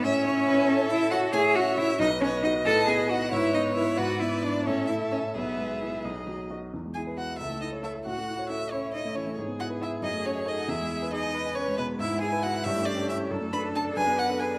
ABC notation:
X:1
M:6/8
L:1/16
Q:3/8=91
K:A
V:1 name="Violin"
c8 e2 f2 | [K:E] g2 f2 e2 d2 c2 d2 | a2 g2 f2 e2 d2 e2 | f2 e2 =d2 c2 e2 c2 |
B6 z6 | z2 g2 f2 e2 d2 e2 | f4 e2 c2 d2 c2 | z2 f2 e2 d2 c2 d2 |
e4 d4 c2 B2 | [K:A] e2 g2 f2 e2 d2 e2 | z2 b2 a2 g2 f2 g2 |]
V:2 name="Viola"
e12 | [K:E] e6 B6 | B6 B6 | =d6 e6 |
e6 d4 z2 | z6 A6 | F6 E6 | G12- |
G6 B6 | [K:A] E6 =G6 | A6 B6 |]
V:3 name="Cello"
C8 E2 F2 | [K:E] G2 F2 E2 D2 C2 D2 | A2 G2 F2 E2 D2 E2 | F2 E2 =D2 C2 E2 C2 |
B,6 z6 | z2 G2 F2 E2 D2 E2 | F4 E2 C2 D2 C2 | z2 F2 E2 D2 C2 D2 |
E4 D4 C2 B,2 | [K:A] E2 G2 F2 E2 D2 E2 | z2 B2 A2 G2 F2 G2 |]
V:4 name="Grand piano"
A,,2 E2 C2 A2 E2 c2 | [K:E] A,,2 C2 [EF]2 B,,,2 B,2 [DF]2 | A,,2 B,2 [DF]2 G,,2 B,2 [EB]2 | G,,2 B,2 [E=d]2 A,,2 A,2 [Ec]2 |
B,,,2 G,2 [Ee]2 B,,,2 F,2 [Fd]2 | E,, G, E B G e C,, A, E c A e | A,, A, E c A e c' e c A, E, A, | G,, B, E B E e F,, A, F d A f |
E,, G, G B G g b g B G, B,, G, | [K:A] G,, G, E B G e =G,, A, C A C c | F,, A, D A D d F,, B, D A B d |]
V:5 name="Violin"
e2 c2 B2 A6 | [K:E] c6 d6- | d6 c6 | B6 A6 |
G8- G z3 | z4 B,2 z4 A,2 | z4 C2 z4 C2 | z4 B,2 z4 A,2 |
z4 G,2 z4 G,2 | [K:A] B,6 C6 | D12 |]